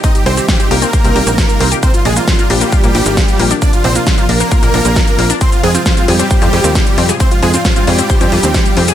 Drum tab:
HH |xxoxxxoxxxoxxxox|xxoxxxoxxxoxxxox|xxoxxxoxxxoxxxox|xxoxxxoxxxoxxxox|
SH |xx-xxx-xxx-xxx-x|xx-xxx-xxx-xxx-x|xx-xxx-xxx-xxx-x|xx-xxx-xxx-xxx-x|
SD |----o-------o---|----o-------o---|----o-------o---|----o-------o---|
BD |o---o---o---o---|o---o---o---o---|o---o---o---o---|o---o---o---o---|

HH |xxoxxxoxxxoxxxox|
SH |xx-xxx-xxx-xxx-x|
SD |----o-------o---|
BD |o---o---o---o---|